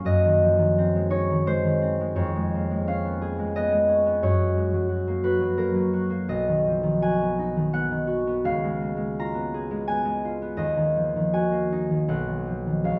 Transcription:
Already playing: F#3 F#4 C#5 F5 F#5
0.05 F#2 D#5
0.25 D#3
0.43 F3
0.58 D#3
0.78 C4
0.95 G#3
1.10 D#4 C#5
1.31 D#3
1.46 G#3 C5
1.64 D#3
1.82 C4
2.00 G#3
2.15 F2 C#5
2.35 G#3
2.54 A#3
2.71 G#3
2.87 C#4 F5
3.05 B3
3.22 G#4
3.39 G#3
3.56 B3 D#5
3.71 G#3
3.88 C#4
4.06 B3
4.22 F#2 C#5
4.40 F#3
4.57 G#3
4.74 F#3
4.89 F#4
5.07 A#3
5.24 F#4 B4
5.41 F#3
5.57 A#3 A#4
5.75 F#3
5.93 F#4
6.10 A#3
6.29 B1 D#5
6.49 D#3
6.67 F3
6.83 D#3
7.02 F#4 G#5
7.21 B3
7.39 D#4
7.56 D#3
7.73 B3 F#5
7.91 D#3
8.07 F#4
8.27 B3
8.44 C#2 F5
8.64 G#3
8.81 A#3
8.97 G#3
9.19 F4 A#5
9.34 B3
9.54 G#4
9.71 G#3
9.88 B3 G#5
10.05 G#3
10.25 F4
10.42 B3
10.57 D#2 D#5
10.77 D#3
10.96 F3
11.16 D#3
11.33 F#4 G#5
11.52 A#3
11.72 D#4
11.90 D#3
12.08 B1 F#5
12.27 D#3
12.46 F3
12.67 D#3
12.84 C#2 F5

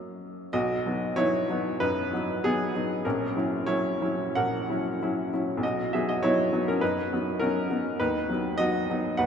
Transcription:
Already playing: F#2 F#3 A#3 F#4 D#5
0.53 B1 F#4 D#5
0.86 F#3 B3 D#4
1.16 F#3 B3 D#4 E4 C#5
1.50 F#3 B3 D#4
1.80 F#2 D#4 B4
2.13 F#3 B3 D#4
2.44 F#3 B3 D#4 G#4
2.75 F#3 B3 D#4
3.05 A#1 C#4 A#4
3.37 F#3 C#4 E4
3.67 F#3 C#4 E4 C#5
4.02 F#3 C#4 E4
4.35 A#1 A#4 F#5
4.70 F#3 C#4 E4
5.02 F#3 C#4 E4
5.34 F#3 C#4 E4
5.57 B1
5.63 F#4 D#5
5.93 F#3 B3 D#4 G#4 E5
6.09 F#4 D#5
6.23 F#3 B3 D#4 E4 C#5
6.53 F#3 B3 D#4
6.68 C#4 A#4
6.81 F#2 D#4 B4
7.13 F#3 B3 D#4
7.40 F#3 B3 C#4 D#4 A#4
7.70 F#3 B3 D#4
8.00 D#2 D#4 B4
8.29 F#3 B3 D#4
8.58 F#3 B3 D#4 F#4 D#5
8.90 F#3 B3 D#4
9.17 D#2 B4 F#5

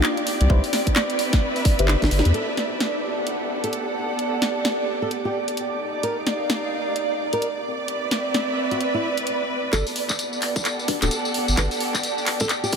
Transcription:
Already playing: D#4 G4 D5 F5
0.03 clap
0.17 closed hi-hat
0.27 C4, open hi-hat
0.41 C2 B4, closed hi-hat
0.50 C2 G4 B4 C5 D5 E5, kick
0.64 open hi-hat
0.73 snare, open hi-hat
0.87 kick, closed hi-hat
0.96 clap, snare
1.10 closed hi-hat
1.19 E5, open hi-hat
1.33 kick, snare, closed hi-hat
1.56 open hi-hat
1.65 kick, open hi-hat
1.79 G1 G4 B4 C5 D5 E5, closed hi-hat
1.88 snare, clap
2.02 G1, kick, snare, closed hi-hat
2.11 G1, open hi-hat
2.19 snare
2.25 E2, closed hi-hat
2.34 B3 A4 D5, closed hi-hat
2.40 G4
2.57 snare, closed hi-hat
2.68 A4
2.80 snare, closed hi-hat
3.26 F#5, closed hi-hat
3.64 A4, closed hi-hat
3.73 closed hi-hat
4.19 closed hi-hat
4.42 snare, closed hi-hat
4.65 snare, closed hi-hat
5.02 A4
5.11 closed hi-hat
5.25 G4
5.48 closed hi-hat
5.57 closed hi-hat
5.80 D#4
6.03 A#4, closed hi-hat
6.13 F5
6.27 snare, closed hi-hat
6.41 D5
6.50 snare, closed hi-hat
6.96 closed hi-hat
7.33 A#4, closed hi-hat
7.42 closed hi-hat
7.65 C4
7.78 E5
7.86 B4, closed hi-hat
8.11 snare, closed hi-hat
8.34 snare, closed hi-hat
8.71 F#4, closed hi-hat
8.81 closed hi-hat
8.94 E4
9.17 closed hi-hat
9.27 closed hi-hat
9.73 G1 B3 D4 F#4 G4 A4 B4 D5, kick, clap, closed hi-hat, tambourine
9.86 open hi-hat, tambourine
9.96 open hi-hat
10.05 G4, tambourine
10.10 kick, clap
10.15 A4, closed hi-hat, tambourine
10.21 F#5
10.33 tambourine
10.42 clap, open hi-hat
10.56 kick, closed hi-hat, tambourine
10.65 clap, closed hi-hat, tambourine
10.79 tambourine
10.88 D4 F#4 G4 A4 B4, kick, open hi-hat
11.02 D1 D4 F#4 G4 A4 B4, clap, closed hi-hat, tambourine
11.11 closed hi-hat, tambourine
11.25 tambourine
11.34 open hi-hat
11.48 G1, tambourine
11.57 G1 D4 F#4 G4 A4 B4, kick, clap, closed hi-hat, tambourine
11.71 open hi-hat, tambourine
11.80 open hi-hat
11.94 kick, clap, tambourine
12.03 closed hi-hat, tambourine
12.18 tambourine
12.26 clap, open hi-hat
12.40 A4, kick, closed hi-hat, tambourine
12.49 clap, closed hi-hat, tambourine
12.63 G4, tambourine
12.73 kick, open hi-hat

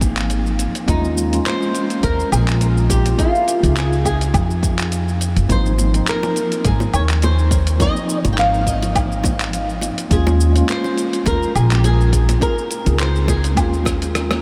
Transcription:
Already playing: G#1 F3 A#3 C4 D#4 G#4
0.01 kick, closed hi-hat, shaker
0.17 clap, closed hi-hat, shaker
0.30 closed hi-hat, shaker
0.46 shaker
0.59 closed hi-hat, shaker
0.75 closed hi-hat, shaker
0.86 D#2 G#3 A#3 C#4 D#4 F4, kick, closed hi-hat, shaker
1.04 shaker
1.17 shaker
1.30 G#3 A#3 C#4, closed hi-hat, shaker
1.35 F4
1.46 C5, clap, closed hi-hat, shaker
1.62 shaker
1.75 closed hi-hat, shaker
1.90 closed hi-hat, shaker
2.03 D#2 A#4, kick, closed hi-hat, shaker
2.20 shaker
2.32 A#1 G#4, closed hi-hat, low woodblock, shaker
2.48 clap, closed hi-hat, shaker
2.61 closed hi-hat, shaker
2.77 shaker
2.90 G4, kick, closed hi-hat, shaker
3.06 closed hi-hat, shaker
3.17 C4 D#4 F4 G#4, kick, closed hi-hat, shaker
3.35 shaker
3.48 closed hi-hat, shaker
3.61 C#2 C4 D#4 F4, closed hi-hat, shaker
3.65 G#4
3.76 G#4, clap, closed hi-hat, shaker
3.93 shaker
4.05 G#4, kick, closed hi-hat, low woodblock, shaker
4.21 closed hi-hat, shaker
4.34 F2, kick, closed hi-hat, low woodblock, shaker
4.50 shaker
4.63 kick, closed hi-hat, shaker
4.79 clap, closed hi-hat, shaker
4.92 closed hi-hat, shaker
5.08 shaker
5.21 closed hi-hat, shaker
5.36 G#1, closed hi-hat, shaker
5.48 G#1 F3 A#3 C4 D#4 C5, kick, closed hi-hat, shaker
5.66 shaker
5.78 high bongo, shaker
5.91 F3 A#3 C4, closed hi-hat, shaker
5.96 D#4
6.07 A#4, clap, closed hi-hat, shaker
6.23 high bongo, shaker
6.36 closed hi-hat, shaker
6.52 closed hi-hat, shaker
6.65 G#1 G#4, kick, closed hi-hat, shaker
6.80 high bongo, shaker
6.93 D#2 C#5, closed hi-hat, low woodblock, shaker
7.09 clap, closed hi-hat, shaker
7.22 C5, closed hi-hat, high bongo, shaker
7.39 shaker
7.51 kick, closed hi-hat, shaker
7.67 closed hi-hat, shaker
7.79 F3 A#3 C4 D#4 D#5, kick, closed hi-hat, high bongo, shaker
7.96 shaker
8.09 shaker
8.22 G#1 F3 A#3 C4, closed hi-hat, high bongo, shaker
8.27 D#4
8.33 G5
8.38 F5, clap, closed hi-hat, shaker
8.54 shaker
8.61 F5
8.66 D#5, kick, closed hi-hat, shaker
8.82 closed hi-hat, high bongo, shaker
8.95 kick, closed hi-hat, low woodblock, shaker
9.12 shaker
9.24 kick, closed hi-hat, high bongo, shaker
9.40 clap, closed hi-hat, shaker
9.53 closed hi-hat, shaker
9.69 shaker
9.81 closed hi-hat, high bongo, shaker
9.98 closed hi-hat, shaker
10.09 D#2 G#3 A#3 C#4 F4 G#4, kick, closed hi-hat, shaker
10.27 high bongo, shaker
10.40 shaker
10.53 G#3 A#3 C#4, closed hi-hat, shaker
10.57 F4
10.69 C5, clap, closed hi-hat, shaker
10.84 high bongo, shaker
10.98 closed hi-hat, shaker
11.13 closed hi-hat, shaker
11.26 D#2 A#4, kick, closed hi-hat, high bongo, shaker
11.43 shaker
11.55 A#1 G#4, closed hi-hat, low woodblock, shaker
11.71 G4, clap, closed hi-hat, shaker
11.84 G#4, closed hi-hat, high bongo, shaker
12.01 shaker
12.12 kick, closed hi-hat, shaker
12.29 closed hi-hat, high bongo, shaker
12.40 C4 D#4 F4 G#4 A#4, kick, closed hi-hat, shaker
12.58 shaker
12.71 closed hi-hat, shaker
12.84 C#2 C4 D#4 F4, closed hi-hat, high bongo, shaker
12.88 G#4
12.99 C5, clap, closed hi-hat, shaker
13.15 shaker
13.28 G#4, kick, closed hi-hat, high bongo, shaker
13.44 closed hi-hat, shaker
13.55 D#2 G#3 A#3 C#4, kick, closed hi-hat, low woodblock, shaker
13.59 F4
13.73 shaker
13.85 kick, cross-stick, closed hi-hat, high bongo, shaker
14.02 closed hi-hat, shaker
14.15 cross-stick, closed hi-hat, shaker
14.31 cross-stick, high bongo, shaker

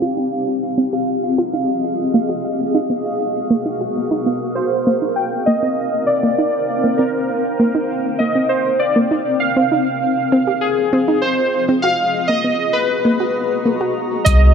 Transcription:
Already playing: C4 D#4 F4 G4 F5 A#5
0.02 F4
0.17 D#4
0.42 G#4
0.62 D#5
0.78 C4
0.93 G4
1.38 F4
1.53 D#4
2.14 A#3 B3
2.27 F#4
2.75 D#4
2.85 A#4
2.90 B3
3.50 A#3
3.66 D#4
3.81 F#4
4.11 D#4
4.26 B3
4.55 C4 C5
4.82 D#4
4.87 A#3
5.00 D#4 G5
5.16 G5
5.31 C5
5.46 A#3 D#5
5.63 C4
6.06 D5
6.23 A#3
6.38 D#4
6.84 A#3
6.97 C4 A#4
7.60 A#3
7.75 D#4
8.19 A#3 D#5
8.35 C4
8.49 C5
8.79 D5
8.96 A#3
9.11 D#4
9.40 F5
9.56 C4
9.67 F4
9.72 D#4
9.76 G#4
10.19 D#5
10.32 C4
10.47 G4
10.61 G#4
10.93 C4
11.08 D#4
11.22 C5
11.69 C4
11.82 B3 F#4 F5
11.90 F#4
12.28 A#3 D#5 A#5
12.44 B3
12.73 B4
13.05 A#3
13.20 F#4
13.66 A#3
13.81 F#4
14.25 C2 C4 D#4 D#5, kick, closed hi-hat
14.34 D#4

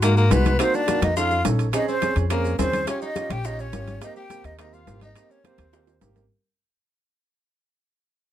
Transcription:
Already playing: G#2
0.02 G#3 A#3 D#4 F#4 A#4, high bongo, high conga, high timbale, maracas
0.17 A#3 A#4, high bongo, high conga, maracas
0.30 C2 G#3 B3 D#4 F#4 B4, high bongo, low bongo, high conga, high timbale, low timbale, maracas
0.45 high bongo, high conga, high timbale, maracas
0.59 A#3 C4 D#4 F#4 C5, high bongo, high conga, high timbale, maracas
0.74 D4 D5, high conga, maracas
0.87 A#3 D#4 F#4, high bongo, high conga, high timbale, low timbale, maracas
1.01 F2 D#4 D#5, high bongo, high conga, high timbale, maracas
1.16 C#4 D#4 F4 A4 F5, high bongo, high conga, maracas
1.31 high bongo, high conga, maracas
1.45 A#1 C#4 D#4 A4, high bongo, low bongo, high conga, high timbale, low timbale, maracas
1.59 high bongo, high timbale, maracas
1.73 C4 C#4 D#4 G#4 D#5, high bongo, high conga, high timbale, maracas
1.88 C4 C5, high conga, maracas
2.02 C4 C#4 G#4, high bongo, high conga, high timbale, low timbale, maracas
2.16 F2, high bongo, high conga, high timbale, maracas
2.30 A#3 C4 C#4 G#4 A#4, high bongo, high conga, high timbale, maracas
2.44 high bongo, high conga, maracas
2.58 D#2 C4 C#4 G#4 C5, high bongo, low bongo, high conga, high timbale, low timbale, maracas
2.73 high bongo, high conga, high timbale, maracas
2.87 C#4 F4 G4 C#5, high bongo, high conga, high timbale, maracas
3.02 D#4 D#5, high conga, maracas
3.15 C#4 F4 G4, high bongo, high conga, high timbale, low timbale, maracas
3.30 A#1 G4 G5, high bongo, high conga, high timbale, maracas
3.45 C#4 D#4 F4 G4 D#5, high bongo, maracas
3.59 C#4 C#5, high bongo, high conga, maracas
3.73 G#1 C#4 F4 G4, high bongo, low bongo, high conga, high timbale, low timbale, maracas
3.88 high bongo, high conga, high timbale, maracas
4.01 A#3 C4 D#4 G4 D#5, high bongo, high conga, high timbale, maracas
4.16 G4 G5, high conga, maracas
4.30 A#3 C4 G4, high bongo, high conga, high timbale, low timbale, maracas
4.44 D#2 D#4 D#5, high bongo, high conga, high timbale, maracas
4.58 A#3 C4 D#4 G4 D#5, high bongo, high conga, high timbale, maracas
4.73 F4 F5, high bongo, high conga, maracas
4.87 G#1 A#3 C4 G4, high bongo, low bongo, high conga, high timbale, low timbale, maracas
5.01 D#4 D#5, high bongo, high conga, high timbale, maracas
5.16 A#3 C4 G4, high bongo, high conga, high timbale, maracas
5.30 C#4 C#5, high conga, maracas
5.44 A#3 C4 G4 C5, high bongo, high conga, high timbale, low timbale, maracas
5.58 D#2, high bongo, high conga, high timbale, maracas
5.73 A#3 C4 G4, high bongo, high conga, high timbale, maracas
5.87 high bongo, high conga, high timbale, maracas
6.01 G#1 A#3 C4 G4, high bongo, low bongo, high conga, low timbale, maracas
6.16 high bongo, high conga, low timbale, maracas

